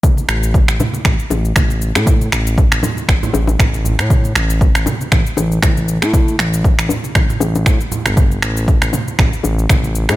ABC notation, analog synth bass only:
X:1
M:4/4
L:1/16
Q:"Swing 16ths" 1/4=118
K:C
V:1 name="Analog synth bass" clef=bass
z2 A,,,3 A,,, z2 A,,, z A,,,2 A,,,3 A,,- | A,,2 A,,,3 A,,, z2 A,,, z A,,,2 A,,,3 A,,- | A,,2 A,,,3 A,,, z2 A,,, z A,,,2 A,,,3 A,,- | A,,2 A,,,3 A,,, z2 A,,, z A,,,2 A,, z2 G,,,- |
G,,,2 A,,,3 A,,, z2 A,,, z A,,,2 A,,,3 A,, |]